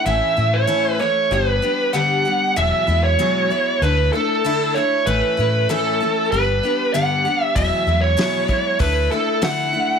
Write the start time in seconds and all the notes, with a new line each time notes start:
0.06 A1 A2 E3 A3 C#4 E4 E5
0.37 A2 A3 C#4 E4
0.53 C#5
0.67 A2 E3 A3 C#4 E4
0.99 A3 C#4 E4 C#5
1.31 G1 G3 B3 D4 G4 B4
1.62 G3 B3 D4 G4
1.93 G2 D3 G3 B3 D4 G4 F#5
2.25 G3 B3 D4 G4
2.56 E1 E2 B2 F#3 G#3 B3 E4 E5
2.87 E2 F#3 G#3 B3 E4
3.04 C#5
3.19 E2 B2 F#3 G#3 B3 E4
3.50 F#3 G#3 B3 E4
3.82 D2 D3 A3 D4 E4 B4
4.13 A3 D4 E4 A4
4.44 D3 A3 D4 E4
4.75 A3 D4 E4 C#5
5.06 A1 A2 E3 A3 C#4 E4 B4
5.37 A2 A3 C#4 E4
5.69 A2 E3 A3 C#4 E4 A4
6.00 A3 C#4 E4
6.32 G1 G3 B3 D4 G4 B4
6.63 G3 B3 D4 G4
6.94 G2 D3 G3 B3 D4 G4 F#5
7.25 G3 B3 D4 G4
7.43 E5
7.55 E1 E2 B2 F#3 G#3 B3 E4 E5, kick, open hi-hat
7.87 E2 F#3 G#3 B3 E4
8.02 C#5
8.17 E2 B2 F#3 G#3 B3 E4, snare, open hi-hat
8.48 F#3 G#3 B3 E4, kick
8.79 D2 D3 A3 D4 E4 B4, kick, open hi-hat
9.11 A3 D4 E4 A4
9.42 D3 A3 D4 E4 F#5, snare, open hi-hat
9.73 A3 D4 E4